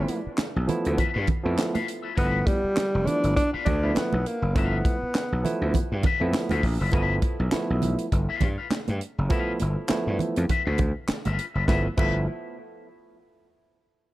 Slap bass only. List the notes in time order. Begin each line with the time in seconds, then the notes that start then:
0.27 muted slap bass stroke
0.56 B1
0.86 D2
0.99 muted slap bass stroke
1.16 G2
1.45 F2
2.18 G1
2.64 muted slap bass stroke
2.95 F1
3.24 G1
3.54 muted slap bass stroke
3.67 D2
3.97 muted slap bass stroke
4.13 B1
4.42 F#1
4.56 G1
5.03 muted slap bass stroke
5.32 B1
5.62 D2
5.75 muted slap bass stroke
5.92 G2
6.21 F2
6.51 D2
6.63 A#1
6.81 F#1
6.93 G1
7.40 B1
7.53 muted slap bass stroke
7.70 B1
8.12 G1
8.42 G2
8.89 G2
9.18 F#1
9.62 G1
9.91 muted slap bass stroke
10.07 G2
10.37 F2
10.50 muted slap bass stroke
10.67 D2
11.10 muted slap bass stroke
11.26 G1
11.55 F#1
11.68 G1
11.98 G1